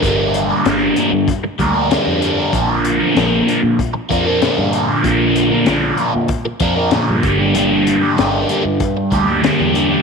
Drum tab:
HH |xxxxxxxx|xxxxxxxx|xxxxxxxx|xxxxxxxx|
SD |--o---o-|--o---o-|--o---o-|--o---o-|
BD |o---oo--|o---oo--|o---oo-o|----oo--|